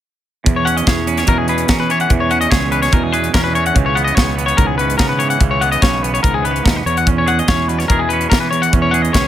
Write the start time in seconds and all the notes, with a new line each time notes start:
0.45 E2, kick, closed hi-hat
0.56 C#5
0.65 C#4 F#5, closed hi-hat
0.77 D#5, closed hi-hat
0.87 E2 G#4 C#5, kick, snare, closed hi-hat
1.07 C#4 B4, closed hi-hat
1.17 C#5, snare, closed hi-hat
1.27 E2 B2 A#4, kick, closed hi-hat
1.38 G#4
1.48 G#4 B4, closed hi-hat
1.58 closed hi-hat
1.68 E3 C#4 A#4, kick, snare, closed hi-hat
1.80 B4
1.90 E3 C#5, closed hi-hat
2.00 F#5, closed hi-hat
2.10 E2, kick, closed hi-hat
2.20 C#5
2.31 C#4 F#5, closed hi-hat
2.41 D#5, closed hi-hat
2.50 C#2 G#4 C#5, kick, snare, closed hi-hat
2.71 C#4 B4, closed hi-hat
2.82 C#5, snare, closed hi-hat
2.92 E2 B2 A#4, kick, closed hi-hat
3.03 G#4
3.12 G#4 B4, closed hi-hat
3.24 closed hi-hat
3.34 E2 C#4 A#4, kick, snare, closed hi-hat
3.44 B4
3.53 E3 C#5, closed hi-hat
3.66 F#5, closed hi-hat
3.74 C#2 C#3, kick, closed hi-hat
3.86 C#5
3.95 B3 F#5, closed hi-hat
4.04 D#5, closed hi-hat
4.15 C#2 C#4 C#5, kick, snare, closed hi-hat
4.36 B3 B4, closed hi-hat
4.46 C#5, closed hi-hat
4.57 C#2 G#2 A#4, kick, closed hi-hat
4.66 G#4
4.78 C#4 B4, closed hi-hat
4.90 closed hi-hat
4.98 C#3 B3 A#4, kick, snare, closed hi-hat
5.09 B4
5.19 E3 C#5, closed hi-hat
5.30 F#5, closed hi-hat
5.40 C#2 C#3, kick, closed hi-hat
5.51 C#5
5.61 B3 F#5, closed hi-hat
5.72 D#5, closed hi-hat
5.82 B1 C#4 C#5, kick, snare, closed hi-hat
6.02 B3 B4, closed hi-hat
6.14 C#5, closed hi-hat
6.22 C#2 G#2 A#4, kick, closed hi-hat
6.34 G#4
6.42 B3 B4, closed hi-hat
6.51 C#4
6.56 closed hi-hat
6.63 D#2 B3 A#4, kick, closed hi-hat
6.68 snare
6.76 B4
6.85 E2 C#5, closed hi-hat
6.97 F#5, closed hi-hat
7.07 C#4, kick, closed hi-hat
7.18 C#5
7.26 G#4 F#5, closed hi-hat
7.39 D#5, closed hi-hat
7.48 E2 C#4 C#5, kick, snare, closed hi-hat
7.68 B2 B4, closed hi-hat
7.79 C#5, snare, closed hi-hat
7.88 E2 G#4 A#4, kick, closed hi-hat
7.99 G#4
8.09 B4, closed hi-hat
8.13 C#4
8.21 closed hi-hat
8.30 E3 A#4, kick, snare, closed hi-hat
8.40 B4
8.51 E2 C#5, closed hi-hat
8.62 F#5, closed hi-hat
8.73 E2 C#4, kick, closed hi-hat
8.82 C#5
8.91 G#4 F#5, closed hi-hat
9.02 D#5, closed hi-hat
9.13 C#2 C#4 C#5, kick, snare, closed hi-hat